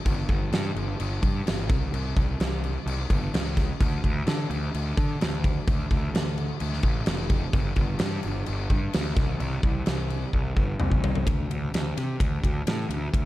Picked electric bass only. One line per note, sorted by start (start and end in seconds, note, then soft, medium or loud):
0.05 0.24 G1 loud
0.29 0.48 G1 medium
0.52 0.71 G2 medium
0.75 0.94 G1 medium
1.00 1.18 G1 medium
1.22 1.41 G2 medium
1.46 1.70 G1 medium
1.70 1.88 C2 medium
1.92 2.11 C2 medium
2.16 2.35 C2 medium
2.40 2.76 C2 medium
2.86 3.04 C2 medium
3.10 3.28 G1 medium
3.34 3.70 C#2 medium
3.80 3.99 D2 medium
4.04 4.22 D2 medium
4.27 4.45 D3 medium
4.50 4.68 D2 medium
4.74 4.92 D2 medium
4.97 5.15 D3 medium
5.21 5.57 D2 medium
5.67 5.85 D2 medium
5.91 6.09 D2 medium
6.13 6.50 D2 loud
6.61 6.79 D2 medium
6.83 7.01 A1 medium
7.07 7.43 F1 loud
7.53 7.72 G1 loud
7.76 7.95 G1 loud
8.01 8.19 G2 medium
8.24 8.42 G1 medium
8.48 8.66 G1 medium
8.70 8.88 G2 medium
8.95 9.12 D2 medium
9.16 9.34 C2 medium
9.40 9.58 C2 loud
9.63 9.81 C2 medium
9.87 10.23 C2 medium
10.33 10.51 C2 medium
10.56 10.74 G1 medium
10.80 11.27 C2 medium
11.27 11.45 D2 loud
11.50 11.68 D2 medium
11.74 11.92 D2 medium
11.97 12.15 C3 medium
12.20 12.38 D2 medium
12.44 12.62 D2 medium
12.67 12.85 A2 medium
12.89 13.08 D2 medium
13.13 13.25 D2 medium